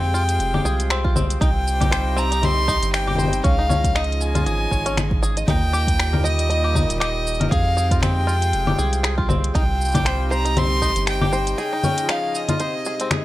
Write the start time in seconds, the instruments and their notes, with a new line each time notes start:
Already playing: analog synth bass F2, harmonium C3 G5, five-string banjo C4, violin G5
0.04 harmonium G#3
0.14 five-string banjo F4, shaker
0.29 harmonium F4, closed hi-hat, shaker
0.39 analog synth bass F1, closed hi-hat, shaker
0.54 five-string banjo G4, low conga
0.65 analog synth bass C2, five-string banjo G#4, shaker
0.80 closed hi-hat, shaker
0.90 five-string banjo C4, finger snap, closed hi-hat, shaker
1.04 five-string banjo F4, kick
1.16 five-string banjo C4, low conga, shaker
1.30 closed hi-hat, shaker
1.41 analog synth bass C2, five-string banjo D#4, violin G5, kick, closed hi-hat, shaker
1.68 harmonium G3, shaker
1.81 five-string banjo G4, kick, closed hi-hat, low conga, shaker
1.85 harmonium D#4
1.91 five-string banjo C5, finger snap, closed hi-hat, shaker
2.16 five-string banjo C4, violin A#5, shaker
2.32 five-string banjo D#4, closed hi-hat, shaker
2.43 five-string banjo C4, violin C6, closed hi-hat, low conga, shaker
2.68 five-string banjo D#4, kick, shaker
2.82 analog synth bass G1, closed hi-hat, shaker
2.94 violin G5, finger snap, closed hi-hat, shaker
3.07 five-string banjo G4, low conga
3.11 low conga
3.15 five-string banjo C5, low conga
3.19 low conga, shaker
3.24 low conga
3.28 low conga
3.33 closed hi-hat, shaker
3.44 analog synth bass C#2, harmonium C#3, five-string banjo C#4, violin F5, kick, closed hi-hat, shaker
3.59 five-string banjo D#4
3.69 five-string banjo C#4, low conga, shaker
3.80 harmonium F3
3.84 kick, closed hi-hat, shaker
3.95 five-string banjo D#4, violin D#5, finger snap, closed hi-hat, shaker
4.04 closed hi-hat
4.12 closed hi-hat
4.21 harmonium G#4, violin G#5, shaker
4.35 five-string banjo F4, closed hi-hat, low conga, shaker
4.46 analog synth bass G#1, five-string banjo G#4, closed hi-hat, shaker
4.71 analog synth bass G#1, five-string banjo C#5, kick, shaker
4.86 five-string banjo C#4, closed hi-hat, shaker
4.97 finger snap, closed hi-hat, low conga, shaker
5.11 kick
5.23 five-string banjo G#4, shaker
5.37 five-string banjo D#5, closed hi-hat, shaker
5.47 analog synth bass D#2, harmonium A#2, five-string banjo D#4, violin G5, kick, closed hi-hat, low conga, shaker
5.69 five-string banjo G4, harmonium G5
5.74 shaker
5.83 harmonium G3
5.87 kick, closed hi-hat, shaker
6.00 finger snap, closed hi-hat, shaker
6.13 five-string banjo A#4, low conga
6.24 five-string banjo D#5, violin D#5, shaker
6.39 closed hi-hat, shaker
6.50 five-string banjo D#5, closed hi-hat, shaker
6.64 five-string banjo G4
6.75 five-string banjo D#4, kick, low conga, shaker
6.90 analog synth bass D#1, closed hi-hat, shaker
7.00 five-string banjo G4, violin D#5, finger snap, closed hi-hat, shaker
7.27 shaker
7.34 shaker
7.40 five-string banjo A#4, closed hi-hat, low conga
7.51 analog synth bass F2, harmonium C3, five-string banjo G#4, violin F5, kick, closed hi-hat, shaker
7.77 five-string banjo G#4, shaker
7.91 harmonium G#3, five-string banjo F4, kick, closed hi-hat, shaker
8.02 five-string banjo C4, violin G5, finger snap, closed hi-hat, low conga, shaker
8.27 five-string banjo F4, shaker
8.39 harmonium F4, closed hi-hat, shaker
8.53 analog synth bass F1, closed hi-hat, shaker
8.67 five-string banjo G4, low conga
8.78 analog synth bass C2, five-string banjo G#4, shaker
8.93 closed hi-hat, shaker
9.03 five-string banjo G#4, finger snap, closed hi-hat, shaker
9.18 five-string banjo F4, kick
9.29 five-string banjo C4, low conga, shaker
9.44 closed hi-hat
9.55 analog synth bass C2, five-string banjo D#4, violin G5, kick, closed hi-hat, shaker
9.81 shaker
9.85 harmonium G3, shaker
9.88 shaker
9.92 five-string banjo G4, kick, closed hi-hat, low conga, shaker
9.95 shaker
10.05 five-string banjo C5, finger snap, closed hi-hat, shaker
10.25 harmonium D#4
10.31 five-string banjo C5, violin A#5, shaker
10.45 five-string banjo D#4, closed hi-hat, shaker
10.57 five-string banjo C4, violin C6, closed hi-hat, low conga, shaker
10.82 five-string banjo D#4, kick, shaker
10.96 analog synth bass G1, closed hi-hat, shaker
11.07 violin G5, finger snap, closed hi-hat, shaker
11.21 five-string banjo G4, low conga
11.33 five-string banjo C5, shaker
11.47 closed hi-hat, shaker
11.58 harmonium C#3, five-string banjo G#4, violin G5, closed hi-hat, shaker
11.73 five-string banjo D#4
11.83 five-string banjo C#4, low conga, shaker
11.98 closed hi-hat, shaker
12.03 harmonium F3 G#4
12.09 five-string banjo D#4, violin F5, finger snap, closed hi-hat, shaker
12.35 violin D#5, shaker
12.49 five-string banjo F4, closed hi-hat, low conga, shaker
12.60 harmonium C3, five-string banjo C5, closed hi-hat, shaker
12.85 five-string banjo G#4, shaker
12.97 harmonium G#3, closed hi-hat, shaker
13.01 five-string banjo C4
13.11 five-string banjo G#4, finger snap, closed hi-hat, low conga, shaker